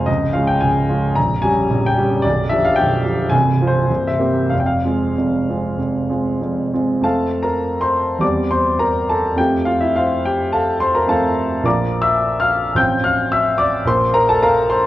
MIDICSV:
0, 0, Header, 1, 2, 480
1, 0, Start_track
1, 0, Tempo, 540054
1, 68, Time_signature, 4, 2, 24, 8
1, 2949, Tempo, 573066
1, 3429, Tempo, 628272
1, 5829, Tempo, 588813
1, 7269, Tempo, 580271
1, 8709, Tempo, 556070
1, 12444, End_track
2, 0, Start_track
2, 0, Title_t, "Grand piano"
2, 0, Program_c, 0, 0
2, 0, Control_c, 0, 64, 127
2, 0, Note_on_c, 0, 29, 38
2, 0, Note_on_c, 0, 41, 36
2, 0, Note_on_c, 0, 56, 35
2, 0, Note_on_c, 0, 60, 35
2, 0, Note_on_c, 0, 65, 39
2, 0, Note_on_c, 0, 77, 57
2, 0, Note_on_c, 0, 79, 61
2, 0, Note_on_c, 0, 80, 68
2, 0, Note_on_c, 0, 84, 66
2, 53, Note_on_c, 0, 75, 69
2, 64, Note_on_c, 0, 37, 45
2, 66, Note_on_c, 0, 25, 35
2, 86, Control_c, 0, 64, 0
2, 91, Note_off_c, 0, 65, 0
2, 92, Note_off_c, 0, 29, 0
2, 92, Note_off_c, 0, 56, 0
2, 92, Note_off_c, 0, 77, 0
2, 92, Note_off_c, 0, 79, 0
2, 93, Note_off_c, 0, 41, 0
2, 94, Note_off_c, 0, 60, 0
2, 94, Note_off_c, 0, 80, 0
2, 94, Note_off_c, 0, 84, 0
2, 203, Control_c, 0, 64, 127
2, 294, Note_on_c, 0, 77, 64
2, 300, Note_off_c, 0, 37, 0
2, 301, Note_off_c, 0, 25, 0
2, 301, Note_off_c, 0, 75, 0
2, 305, Note_on_c, 0, 56, 37
2, 308, Note_on_c, 0, 65, 40
2, 313, Note_on_c, 0, 61, 37
2, 420, Note_on_c, 0, 79, 69
2, 423, Note_off_c, 0, 77, 0
2, 525, Note_off_c, 0, 56, 0
2, 527, Note_off_c, 0, 65, 0
2, 529, Note_off_c, 0, 61, 0
2, 537, Note_on_c, 0, 80, 70
2, 546, Note_off_c, 0, 79, 0
2, 548, Note_on_c, 0, 25, 41
2, 551, Note_on_c, 0, 37, 41
2, 783, Note_off_c, 0, 25, 0
2, 785, Note_off_c, 0, 37, 0
2, 789, Note_on_c, 0, 56, 35
2, 798, Note_on_c, 0, 65, 35
2, 799, Note_on_c, 0, 61, 35
2, 1006, Note_off_c, 0, 56, 0
2, 1011, Note_off_c, 0, 65, 0
2, 1012, Note_off_c, 0, 61, 0
2, 1024, Note_off_c, 0, 80, 0
2, 1025, Note_on_c, 0, 82, 70
2, 1045, Note_on_c, 0, 34, 45
2, 1048, Note_on_c, 0, 22, 39
2, 1049, Control_c, 0, 64, 0
2, 1173, Control_c, 0, 64, 127
2, 1261, Note_on_c, 0, 80, 78
2, 1268, Note_off_c, 0, 82, 0
2, 1271, Note_off_c, 0, 34, 0
2, 1272, Note_off_c, 0, 22, 0
2, 1276, Note_on_c, 0, 55, 41
2, 1283, Note_on_c, 0, 61, 39
2, 1284, Note_on_c, 0, 67, 42
2, 1490, Note_off_c, 0, 55, 0
2, 1494, Note_off_c, 0, 61, 0
2, 1495, Note_off_c, 0, 67, 0
2, 1512, Note_on_c, 0, 22, 49
2, 1513, Note_on_c, 0, 34, 46
2, 1655, Note_on_c, 0, 79, 72
2, 1667, Note_off_c, 0, 80, 0
2, 1747, Note_off_c, 0, 22, 0
2, 1747, Note_off_c, 0, 34, 0
2, 1753, Note_on_c, 0, 55, 40
2, 1756, Note_on_c, 0, 67, 46
2, 1757, Note_on_c, 0, 61, 38
2, 1971, Note_off_c, 0, 55, 0
2, 1973, Note_off_c, 0, 61, 0
2, 1973, Note_off_c, 0, 67, 0
2, 1973, Note_on_c, 0, 74, 78
2, 1987, Note_off_c, 0, 79, 0
2, 1992, Note_on_c, 0, 23, 46
2, 1996, Note_on_c, 0, 35, 52
2, 2012, Control_c, 0, 64, 0
2, 2145, Control_c, 0, 64, 127
2, 2217, Note_on_c, 0, 76, 77
2, 2222, Note_off_c, 0, 74, 0
2, 2224, Note_off_c, 0, 23, 0
2, 2226, Note_off_c, 0, 35, 0
2, 2226, Note_on_c, 0, 53, 43
2, 2227, Note_on_c, 0, 62, 40
2, 2235, Note_on_c, 0, 67, 43
2, 2342, Note_off_c, 0, 76, 0
2, 2352, Note_on_c, 0, 77, 78
2, 2440, Note_off_c, 0, 53, 0
2, 2441, Note_off_c, 0, 62, 0
2, 2445, Note_off_c, 0, 67, 0
2, 2451, Note_on_c, 0, 79, 76
2, 2466, Note_on_c, 0, 23, 46
2, 2469, Note_off_c, 0, 77, 0
2, 2469, Note_on_c, 0, 35, 44
2, 2697, Note_off_c, 0, 23, 0
2, 2699, Note_off_c, 0, 35, 0
2, 2701, Note_on_c, 0, 53, 35
2, 2707, Note_on_c, 0, 62, 36
2, 2710, Note_on_c, 0, 67, 41
2, 2921, Note_off_c, 0, 53, 0
2, 2924, Note_off_c, 0, 62, 0
2, 2926, Note_off_c, 0, 67, 0
2, 2928, Note_on_c, 0, 80, 77
2, 2940, Note_off_c, 0, 79, 0
2, 2945, Note_on_c, 0, 24, 45
2, 2946, Note_on_c, 0, 36, 47
2, 2965, Control_c, 0, 64, 0
2, 3082, Control_c, 0, 64, 127
2, 3175, Note_off_c, 0, 24, 0
2, 3175, Note_off_c, 0, 36, 0
2, 3195, Note_on_c, 0, 53, 38
2, 3195, Note_on_c, 0, 60, 35
2, 3199, Note_on_c, 0, 65, 40
2, 3247, Note_on_c, 0, 72, 66
2, 3254, Note_off_c, 0, 80, 0
2, 3410, Note_off_c, 0, 53, 0
2, 3410, Note_off_c, 0, 60, 0
2, 3412, Note_off_c, 0, 65, 0
2, 3434, Note_on_c, 0, 24, 39
2, 3436, Note_on_c, 0, 36, 44
2, 3442, Control_c, 0, 64, 0
2, 3558, Control_c, 0, 64, 127
2, 3570, Note_on_c, 0, 76, 61
2, 3575, Note_off_c, 0, 72, 0
2, 3658, Note_off_c, 0, 24, 0
2, 3659, Note_off_c, 0, 36, 0
2, 3661, Note_on_c, 0, 60, 31
2, 3662, Note_on_c, 0, 58, 33
2, 3666, Note_on_c, 0, 67, 39
2, 3882, Note_off_c, 0, 58, 0
2, 3882, Note_off_c, 0, 60, 0
2, 3885, Note_off_c, 0, 67, 0
2, 3891, Note_on_c, 0, 77, 58
2, 3900, Note_on_c, 0, 41, 42
2, 3901, Note_off_c, 0, 76, 0
2, 3901, Note_on_c, 0, 29, 34
2, 3924, Control_c, 0, 64, 0
2, 3962, Note_off_c, 0, 77, 0
2, 3969, Note_on_c, 0, 79, 48
2, 4018, Note_on_c, 0, 77, 59
2, 4032, Note_off_c, 0, 79, 0
2, 4101, Control_c, 0, 64, 127
2, 4146, Note_off_c, 0, 41, 0
2, 4147, Note_off_c, 0, 29, 0
2, 4158, Note_on_c, 0, 56, 30
2, 4160, Note_on_c, 0, 60, 32
2, 4162, Note_on_c, 0, 65, 33
2, 4378, Note_off_c, 0, 56, 0
2, 4379, Note_off_c, 0, 60, 0
2, 4380, Note_off_c, 0, 65, 0
2, 4408, Note_on_c, 0, 29, 35
2, 4408, Note_on_c, 0, 41, 36
2, 4637, Note_off_c, 0, 29, 0
2, 4637, Note_off_c, 0, 41, 0
2, 4651, Note_on_c, 0, 56, 28
2, 4652, Note_on_c, 0, 60, 28
2, 4655, Note_on_c, 0, 65, 30
2, 4860, Note_off_c, 0, 56, 0
2, 4860, Note_off_c, 0, 60, 0
2, 4862, Note_off_c, 0, 65, 0
2, 4871, Note_on_c, 0, 29, 33
2, 4874, Note_on_c, 0, 41, 33
2, 5104, Note_off_c, 0, 29, 0
2, 5105, Note_off_c, 0, 41, 0
2, 5113, Note_on_c, 0, 56, 30
2, 5116, Note_on_c, 0, 60, 30
2, 5119, Note_on_c, 0, 65, 33
2, 5328, Note_off_c, 0, 56, 0
2, 5329, Note_off_c, 0, 60, 0
2, 5331, Note_off_c, 0, 65, 0
2, 5353, Note_on_c, 0, 29, 32
2, 5354, Note_on_c, 0, 41, 36
2, 5585, Note_off_c, 0, 77, 0
2, 5586, Note_off_c, 0, 29, 0
2, 5586, Note_off_c, 0, 41, 0
2, 5602, Note_on_c, 0, 60, 28
2, 5603, Note_on_c, 0, 56, 30
2, 5604, Note_on_c, 0, 65, 32
2, 5810, Note_off_c, 0, 60, 0
2, 5811, Note_off_c, 0, 56, 0
2, 5811, Note_off_c, 0, 65, 0
2, 5812, Note_on_c, 0, 41, 36
2, 5817, Note_on_c, 0, 57, 32
2, 5826, Note_on_c, 0, 60, 29
2, 5832, Note_on_c, 0, 81, 65
2, 5835, Note_on_c, 0, 65, 31
2, 5837, Note_on_c, 0, 77, 51
2, 5838, Note_on_c, 0, 69, 44
2, 5843, Control_c, 0, 64, 0
2, 6001, Control_c, 0, 64, 127
2, 6135, Note_off_c, 0, 69, 0
2, 6135, Note_off_c, 0, 77, 0
2, 6149, Note_on_c, 0, 82, 64
2, 6155, Note_off_c, 0, 81, 0
2, 6163, Note_on_c, 0, 70, 47
2, 6457, Note_off_c, 0, 70, 0
2, 6463, Note_on_c, 0, 84, 72
2, 6472, Note_off_c, 0, 82, 0
2, 6474, Note_on_c, 0, 72, 54
2, 6754, Note_off_c, 0, 41, 0
2, 6756, Note_off_c, 0, 57, 0
2, 6761, Note_off_c, 0, 60, 0
2, 6766, Note_off_c, 0, 65, 0
2, 6770, Note_off_c, 0, 72, 0
2, 6770, Note_on_c, 0, 40, 40
2, 6779, Note_on_c, 0, 55, 32
2, 6783, Note_on_c, 0, 60, 33
2, 6786, Note_off_c, 0, 84, 0
2, 6789, Note_on_c, 0, 86, 67
2, 6791, Note_on_c, 0, 67, 32
2, 6797, Note_on_c, 0, 74, 48
2, 6807, Control_c, 0, 64, 0
2, 6951, Control_c, 0, 64, 127
2, 7017, Note_off_c, 0, 74, 0
2, 7029, Note_off_c, 0, 86, 0
2, 7031, Note_on_c, 0, 84, 68
2, 7037, Note_on_c, 0, 72, 53
2, 7255, Note_off_c, 0, 72, 0
2, 7264, Note_on_c, 0, 82, 69
2, 7269, Note_off_c, 0, 84, 0
2, 7271, Note_on_c, 0, 70, 48
2, 7492, Note_off_c, 0, 70, 0
2, 7506, Note_off_c, 0, 82, 0
2, 7512, Note_on_c, 0, 81, 64
2, 7521, Note_on_c, 0, 69, 51
2, 7707, Note_off_c, 0, 40, 0
2, 7712, Note_off_c, 0, 55, 0
2, 7714, Note_off_c, 0, 60, 0
2, 7718, Note_off_c, 0, 67, 0
2, 7729, Note_on_c, 0, 41, 40
2, 7734, Note_on_c, 0, 57, 33
2, 7737, Note_off_c, 0, 69, 0
2, 7744, Note_on_c, 0, 60, 32
2, 7747, Note_on_c, 0, 79, 65
2, 7748, Note_on_c, 0, 65, 31
2, 7750, Note_off_c, 0, 81, 0
2, 7759, Note_on_c, 0, 67, 45
2, 7765, Control_c, 0, 64, 0
2, 7882, Control_c, 0, 64, 127
2, 7974, Note_off_c, 0, 65, 0
2, 7975, Note_on_c, 0, 77, 67
2, 7979, Note_off_c, 0, 67, 0
2, 7986, Note_on_c, 0, 65, 53
2, 7989, Note_off_c, 0, 79, 0
2, 8100, Note_off_c, 0, 65, 0
2, 8101, Note_on_c, 0, 76, 59
2, 8103, Note_off_c, 0, 77, 0
2, 8113, Note_on_c, 0, 64, 50
2, 8224, Note_off_c, 0, 64, 0
2, 8226, Note_on_c, 0, 77, 65
2, 8227, Note_off_c, 0, 76, 0
2, 8238, Note_on_c, 0, 65, 46
2, 8240, Note_on_c, 0, 72, 44
2, 8458, Note_off_c, 0, 65, 0
2, 8459, Note_off_c, 0, 72, 0
2, 8469, Note_off_c, 0, 77, 0
2, 8472, Note_on_c, 0, 79, 62
2, 8482, Note_on_c, 0, 67, 43
2, 8697, Note_on_c, 0, 81, 65
2, 8698, Note_off_c, 0, 67, 0
2, 8707, Note_on_c, 0, 69, 51
2, 8709, Note_off_c, 0, 79, 0
2, 8709, Note_on_c, 0, 77, 50
2, 8932, Note_off_c, 0, 69, 0
2, 8933, Note_off_c, 0, 77, 0
2, 8937, Note_on_c, 0, 84, 72
2, 8944, Note_off_c, 0, 81, 0
2, 8951, Note_on_c, 0, 72, 58
2, 9061, Note_off_c, 0, 72, 0
2, 9062, Note_off_c, 0, 84, 0
2, 9062, Note_on_c, 0, 82, 60
2, 9075, Note_on_c, 0, 70, 48
2, 9143, Note_off_c, 0, 41, 0
2, 9146, Note_off_c, 0, 57, 0
2, 9151, Note_off_c, 0, 60, 0
2, 9167, Note_on_c, 0, 41, 45
2, 9176, Note_on_c, 0, 57, 37
2, 9182, Note_off_c, 0, 70, 0
2, 9183, Note_on_c, 0, 60, 35
2, 9184, Note_off_c, 0, 82, 0
2, 9185, Note_on_c, 0, 81, 71
2, 9187, Note_on_c, 0, 65, 40
2, 9194, Note_on_c, 0, 69, 55
2, 9196, Note_on_c, 0, 77, 54
2, 9634, Note_off_c, 0, 69, 0
2, 9636, Note_off_c, 0, 77, 0
2, 9640, Note_off_c, 0, 41, 0
2, 9644, Note_off_c, 0, 57, 0
2, 9648, Note_off_c, 0, 60, 0
2, 9650, Note_off_c, 0, 65, 0
2, 9651, Note_on_c, 0, 34, 45
2, 9660, Note_on_c, 0, 53, 37
2, 9663, Note_off_c, 0, 81, 0
2, 9663, Note_on_c, 0, 58, 34
2, 9673, Note_on_c, 0, 86, 71
2, 9676, Note_on_c, 0, 74, 53
2, 9677, Note_on_c, 0, 65, 38
2, 9682, Control_c, 0, 64, 0
2, 9682, Note_on_c, 0, 82, 51
2, 9818, Control_c, 0, 64, 127
2, 9967, Note_off_c, 0, 74, 0
2, 9969, Note_off_c, 0, 82, 0
2, 9985, Note_on_c, 0, 88, 81
2, 9987, Note_off_c, 0, 86, 0
2, 9996, Note_on_c, 0, 76, 56
2, 10287, Note_off_c, 0, 76, 0
2, 10303, Note_off_c, 0, 88, 0
2, 10315, Note_on_c, 0, 89, 80
2, 10326, Note_on_c, 0, 77, 62
2, 10585, Note_off_c, 0, 34, 0
2, 10590, Note_off_c, 0, 53, 0
2, 10592, Note_off_c, 0, 58, 0
2, 10599, Note_off_c, 0, 65, 0
2, 10612, Note_off_c, 0, 77, 0
2, 10612, Note_on_c, 0, 33, 42
2, 10619, Note_on_c, 0, 53, 38
2, 10627, Note_off_c, 0, 89, 0
2, 10628, Note_on_c, 0, 91, 76
2, 10632, Note_on_c, 0, 60, 36
2, 10634, Note_on_c, 0, 65, 38
2, 10636, Control_c, 0, 64, 0
2, 10640, Note_on_c, 0, 79, 61
2, 10802, Control_c, 0, 64, 127
2, 10853, Note_off_c, 0, 79, 0
2, 10862, Note_off_c, 0, 91, 0
2, 10866, Note_on_c, 0, 89, 78
2, 10878, Note_on_c, 0, 77, 65
2, 11091, Note_off_c, 0, 77, 0
2, 11101, Note_off_c, 0, 89, 0
2, 11109, Note_on_c, 0, 88, 81
2, 11119, Note_on_c, 0, 76, 63
2, 11333, Note_off_c, 0, 76, 0
2, 11336, Note_on_c, 0, 86, 83
2, 11344, Note_off_c, 0, 88, 0
2, 11345, Note_on_c, 0, 74, 66
2, 11548, Note_off_c, 0, 33, 0
2, 11551, Note_off_c, 0, 53, 0
2, 11558, Note_off_c, 0, 60, 0
2, 11559, Note_off_c, 0, 65, 0
2, 11567, Note_on_c, 0, 34, 49
2, 11568, Note_off_c, 0, 74, 0
2, 11575, Note_on_c, 0, 53, 40
2, 11580, Note_off_c, 0, 86, 0
2, 11587, Note_on_c, 0, 58, 40
2, 11589, Note_on_c, 0, 84, 85
2, 11593, Note_on_c, 0, 65, 43
2, 11595, Control_c, 0, 64, 0
2, 11600, Note_on_c, 0, 72, 60
2, 11714, Control_c, 0, 64, 127
2, 11816, Note_off_c, 0, 72, 0
2, 11817, Note_on_c, 0, 82, 81
2, 11827, Note_off_c, 0, 84, 0
2, 11827, Note_on_c, 0, 70, 60
2, 11938, Note_off_c, 0, 70, 0
2, 11941, Note_off_c, 0, 82, 0
2, 11946, Note_on_c, 0, 81, 80
2, 11953, Note_on_c, 0, 69, 61
2, 12061, Note_off_c, 0, 69, 0
2, 12064, Note_on_c, 0, 82, 83
2, 12065, Note_off_c, 0, 81, 0
2, 12069, Note_on_c, 0, 70, 62
2, 12070, Note_on_c, 0, 77, 64
2, 12291, Note_off_c, 0, 70, 0
2, 12292, Note_off_c, 0, 77, 0
2, 12298, Note_on_c, 0, 84, 78
2, 12305, Note_off_c, 0, 82, 0
2, 12309, Note_on_c, 0, 72, 58
2, 12444, Note_off_c, 0, 34, 0
2, 12444, Note_off_c, 0, 53, 0
2, 12444, Note_off_c, 0, 58, 0
2, 12444, Note_off_c, 0, 65, 0
2, 12444, Note_off_c, 0, 72, 0
2, 12444, Note_off_c, 0, 84, 0
2, 12444, End_track
0, 0, End_of_file